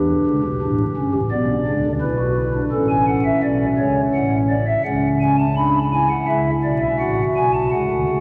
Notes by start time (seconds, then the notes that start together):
Already playing: E2 E3 D4 G4
0.26 C#2 C#3
0.43 B1 B2
0.61 A1 A2 D4
0.96 G1 G2 C#4
1.14 A1 A2
1.31 B1 B2 B3 D5
1.67 C#2 C#3 D4
1.84 D2 D3
2.01 B1 B2 E4 B4
2.19 F#4
2.36 E4
2.54 D4
2.72 A1 A2 C#4 A4
2.89 G#5
3.08 F#5
3.25 E5
3.43 B1 B2 D5
3.78 C#2 C#3 C#5
4.14 A1 A2 F#5
4.50 D5
4.67 E5
4.84 C#2 C#3 C#4 F#5
5.21 G#5
5.39 A5
5.57 D4 B5
5.92 E4 G#5
6.10 F#5
6.28 C#2 C#3 E5
6.63 B1 B2 D5
6.81 E5
6.99 A1 A2 F#4 F#5
7.36 B1 B2 G#5
7.54 A5
7.71 C#2 C#3 F#5
7.90 D2 D3
8.08 C#2 C#3